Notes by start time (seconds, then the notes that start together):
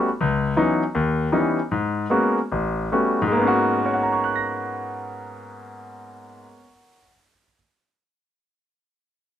0.21 C#2
0.57 E3 F#3 B3 C#4 D#4
0.95 D#2
1.32 E3 G3 B3 C#4 D#4
1.71 G#2
2.10 G#3 A#3 B3 C#4 F#4
2.52 A1
2.92 G3 A3 B3 C#4 F#4
3.22 G#2
3.28 G#3 A#3
3.37 B3
3.42 C#4
3.47 F#4
3.78 A#4
3.86 C#5
3.94 F#5
4.03 A#5
4.12 C#6
4.24 F#6
4.36 A#6